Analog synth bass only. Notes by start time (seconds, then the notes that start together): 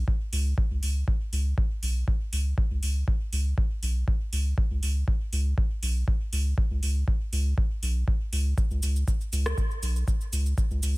0.33 C#2
0.71 C#2
0.83 C#2
1.33 C#2
1.83 B1
2.33 C#2
2.71 C#2
2.83 C#2
3.33 C#2
3.83 B1
4.33 C#2
4.71 C#2
4.83 C#2
5.33 C#2
5.83 B1
6.33 C#2
6.71 C#2
6.83 C#2
7.33 C#2
7.83 B1
8.33 C#2
8.71 C#2
8.83 C#2
9.33 C#2
9.83 B1
10.33 C#2
10.71 C#2
10.83 C#2